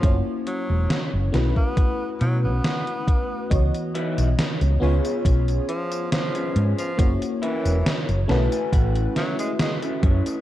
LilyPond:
<<
  \new Staff \with { instrumentName = "Clean electric guitar" } { \time 4/4 \key cis \minor \tempo 4 = 69 << { r1 | r1 | r4. a''16 gis''16 fis''8 e''8 dis''8 cis''8 | } \\ { r1 | r8 <dis' e' fis' b'>8 r8 <cis' eis' gis' b'>4. r16 <cis' eis' gis' b'>8. | r8 <cis' e' fis' ais'>8 r8 <cis' e' a' b'>4. r16 <cis' e' a' b'>8. | } >> }
  \new Staff \with { instrumentName = "FM electric piano" } { \time 4/4 \key cis \minor <ais cis' e' fis' cis''>4. <a cis' e' fis' b'>2~ <a cis' e' fis' b'>8 | <e b fis' cis'' dis''>4. <b cis' eis' gis' cis''>2~ <b cis' eis' gis' cis''>8 | <ais cis' e' fis' cis''>4. <a cis' e' fis' b'>2~ <a cis' e' fis' b'>8 | }
  \new Staff \with { instrumentName = "Tenor saxophone" } { \clef bass \time 4/4 \key cis \minor r8 fis8 r8. b8 r16 fis16 b4~ b16 | r2 r8 eis8 eis8 r16 eis16 | r8 e8 r4. fis16 gis16 gis16 r8. | }
  \new Staff \with { instrumentName = "Fingered electric bass" } { \clef bass \time 4/4 \key cis \minor fis,,16 r8 e,,16 r16 fis,,16 b,,16 r8. b,16 b,,16 r4 | cis,16 r8 b,,16 r16 cis,16 cis,16 r16 b,,16 r4 r16 gis,16 r16 | fis,,16 r8 e,,16 r16 fis,,16 b,,16 r16 a,,16 r4 r16 fis,16 r16 | }
  \new DrumStaff \with { instrumentName = "Drums" } \drummode { \time 4/4 <hh bd>8 hh8 <hh sn>8 <hh sn>16 bd16 <hh bd>8 hh8 <hh sn>16 hh16 <hh bd>8 | <hh bd tamb>16 <hh tamb>16 hh16 <hh tamb>16 <hh sn tamb>16 <hh tamb>8 <hh tamb>16 <hh bd tamb>16 <hh tamb>16 hh16 <hh tamb>16 <hh sn tamb>16 <hh tamb>16 hh16 <hh tamb>16 | <hh bd tamb>16 <hh tamb>16 hh16 <hh tamb>16 <hh sn tamb>16 <hh tamb>16 sn16 <hh tamb>16 <hh bd tamb>16 <hh tamb>16 <hh sn>16 <hh tamb>16 <hh sn tamb>16 <hh tamb>16 <hh bd>16 <hh tamb>16 | }
>>